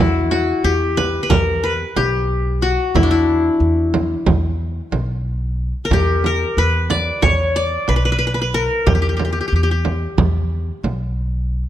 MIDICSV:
0, 0, Header, 1, 4, 480
1, 0, Start_track
1, 0, Tempo, 657174
1, 2155, Time_signature, 9, 3, 24, 8
1, 8539, End_track
2, 0, Start_track
2, 0, Title_t, "Qanun"
2, 0, Program_c, 0, 107
2, 0, Note_on_c, 0, 62, 55
2, 0, Note_on_c, 0, 64, 73
2, 0, Note_on_c, 0, 66, 56
2, 225, Note_off_c, 0, 66, 0
2, 227, Note_on_c, 0, 66, 69
2, 470, Note_on_c, 0, 67, 85
2, 473, Note_off_c, 0, 62, 0
2, 514, Note_off_c, 0, 66, 0
2, 710, Note_on_c, 0, 71, 81
2, 895, Note_off_c, 0, 71, 0
2, 898, Note_on_c, 0, 71, 62
2, 949, Note_on_c, 0, 70, 88
2, 992, Note_off_c, 0, 71, 0
2, 998, Note_off_c, 0, 64, 0
2, 1195, Note_on_c, 0, 71, 70
2, 1239, Note_off_c, 0, 70, 0
2, 1382, Note_off_c, 0, 67, 0
2, 1436, Note_on_c, 0, 67, 76
2, 1916, Note_on_c, 0, 66, 70
2, 1960, Note_off_c, 0, 67, 0
2, 1992, Note_off_c, 0, 71, 0
2, 2158, Note_on_c, 0, 64, 65
2, 2213, Note_on_c, 0, 62, 60
2, 2267, Note_off_c, 0, 64, 0
2, 2270, Note_on_c, 0, 64, 69
2, 2864, Note_off_c, 0, 66, 0
2, 3287, Note_off_c, 0, 64, 0
2, 3305, Note_off_c, 0, 62, 0
2, 4272, Note_on_c, 0, 70, 61
2, 4332, Note_on_c, 0, 67, 85
2, 4569, Note_off_c, 0, 70, 0
2, 4572, Note_on_c, 0, 70, 74
2, 4807, Note_on_c, 0, 71, 86
2, 4851, Note_off_c, 0, 70, 0
2, 5042, Note_on_c, 0, 74, 90
2, 5244, Note_off_c, 0, 67, 0
2, 5276, Note_on_c, 0, 73, 87
2, 5320, Note_off_c, 0, 74, 0
2, 5521, Note_on_c, 0, 74, 81
2, 5565, Note_off_c, 0, 73, 0
2, 5605, Note_off_c, 0, 71, 0
2, 5760, Note_on_c, 0, 71, 72
2, 5812, Note_off_c, 0, 71, 0
2, 5814, Note_on_c, 0, 71, 56
2, 5878, Note_off_c, 0, 71, 0
2, 5881, Note_on_c, 0, 71, 64
2, 5927, Note_off_c, 0, 71, 0
2, 5930, Note_on_c, 0, 71, 58
2, 5976, Note_off_c, 0, 71, 0
2, 5979, Note_on_c, 0, 71, 68
2, 6037, Note_off_c, 0, 71, 0
2, 6039, Note_on_c, 0, 71, 53
2, 6091, Note_off_c, 0, 71, 0
2, 6094, Note_on_c, 0, 71, 60
2, 6144, Note_off_c, 0, 71, 0
2, 6147, Note_on_c, 0, 71, 60
2, 6240, Note_on_c, 0, 70, 77
2, 6242, Note_off_c, 0, 74, 0
2, 6284, Note_off_c, 0, 71, 0
2, 6475, Note_on_c, 0, 67, 68
2, 6532, Note_off_c, 0, 67, 0
2, 6535, Note_on_c, 0, 67, 48
2, 6584, Note_off_c, 0, 67, 0
2, 6587, Note_on_c, 0, 67, 51
2, 6636, Note_off_c, 0, 67, 0
2, 6639, Note_on_c, 0, 67, 41
2, 6692, Note_off_c, 0, 67, 0
2, 6695, Note_on_c, 0, 67, 44
2, 6752, Note_off_c, 0, 67, 0
2, 6755, Note_on_c, 0, 67, 42
2, 6808, Note_off_c, 0, 67, 0
2, 6811, Note_on_c, 0, 67, 46
2, 6867, Note_off_c, 0, 67, 0
2, 6870, Note_on_c, 0, 67, 41
2, 6919, Note_off_c, 0, 67, 0
2, 6922, Note_on_c, 0, 67, 48
2, 6978, Note_off_c, 0, 67, 0
2, 6981, Note_on_c, 0, 67, 42
2, 7032, Note_off_c, 0, 67, 0
2, 7035, Note_on_c, 0, 67, 56
2, 7069, Note_off_c, 0, 70, 0
2, 7091, Note_off_c, 0, 67, 0
2, 7094, Note_on_c, 0, 67, 44
2, 8005, Note_off_c, 0, 67, 0
2, 8539, End_track
3, 0, Start_track
3, 0, Title_t, "Upright bass"
3, 0, Program_c, 1, 32
3, 0, Note_on_c, 1, 40, 84
3, 368, Note_off_c, 1, 40, 0
3, 467, Note_on_c, 1, 40, 76
3, 853, Note_off_c, 1, 40, 0
3, 945, Note_on_c, 1, 40, 75
3, 1332, Note_off_c, 1, 40, 0
3, 1434, Note_on_c, 1, 35, 77
3, 2010, Note_off_c, 1, 35, 0
3, 2152, Note_on_c, 1, 40, 90
3, 2537, Note_off_c, 1, 40, 0
3, 2631, Note_on_c, 1, 40, 82
3, 3017, Note_off_c, 1, 40, 0
3, 3116, Note_on_c, 1, 40, 76
3, 3500, Note_off_c, 1, 40, 0
3, 3595, Note_on_c, 1, 35, 78
3, 4171, Note_off_c, 1, 35, 0
3, 4315, Note_on_c, 1, 40, 89
3, 4700, Note_off_c, 1, 40, 0
3, 4799, Note_on_c, 1, 40, 82
3, 5182, Note_off_c, 1, 40, 0
3, 5280, Note_on_c, 1, 40, 81
3, 5663, Note_off_c, 1, 40, 0
3, 5757, Note_on_c, 1, 35, 78
3, 6331, Note_off_c, 1, 35, 0
3, 6476, Note_on_c, 1, 40, 97
3, 6859, Note_off_c, 1, 40, 0
3, 6955, Note_on_c, 1, 40, 81
3, 7338, Note_off_c, 1, 40, 0
3, 7433, Note_on_c, 1, 40, 74
3, 7815, Note_off_c, 1, 40, 0
3, 7913, Note_on_c, 1, 35, 75
3, 8485, Note_off_c, 1, 35, 0
3, 8539, End_track
4, 0, Start_track
4, 0, Title_t, "Frame drum"
4, 233, Note_on_c, 9, 64, 60
4, 306, Note_off_c, 9, 64, 0
4, 714, Note_on_c, 9, 64, 65
4, 787, Note_off_c, 9, 64, 0
4, 954, Note_on_c, 9, 64, 81
4, 1027, Note_off_c, 9, 64, 0
4, 1435, Note_on_c, 9, 64, 62
4, 1508, Note_off_c, 9, 64, 0
4, 2158, Note_on_c, 9, 64, 87
4, 2231, Note_off_c, 9, 64, 0
4, 2877, Note_on_c, 9, 64, 66
4, 2950, Note_off_c, 9, 64, 0
4, 3114, Note_on_c, 9, 64, 80
4, 3187, Note_off_c, 9, 64, 0
4, 3596, Note_on_c, 9, 64, 58
4, 3669, Note_off_c, 9, 64, 0
4, 4319, Note_on_c, 9, 64, 84
4, 4392, Note_off_c, 9, 64, 0
4, 4559, Note_on_c, 9, 64, 58
4, 4632, Note_off_c, 9, 64, 0
4, 5039, Note_on_c, 9, 64, 59
4, 5112, Note_off_c, 9, 64, 0
4, 5280, Note_on_c, 9, 64, 81
4, 5353, Note_off_c, 9, 64, 0
4, 5754, Note_on_c, 9, 64, 60
4, 5827, Note_off_c, 9, 64, 0
4, 6478, Note_on_c, 9, 64, 85
4, 6551, Note_off_c, 9, 64, 0
4, 6716, Note_on_c, 9, 64, 63
4, 6789, Note_off_c, 9, 64, 0
4, 7194, Note_on_c, 9, 64, 63
4, 7267, Note_off_c, 9, 64, 0
4, 7436, Note_on_c, 9, 64, 87
4, 7509, Note_off_c, 9, 64, 0
4, 7919, Note_on_c, 9, 64, 58
4, 7992, Note_off_c, 9, 64, 0
4, 8539, End_track
0, 0, End_of_file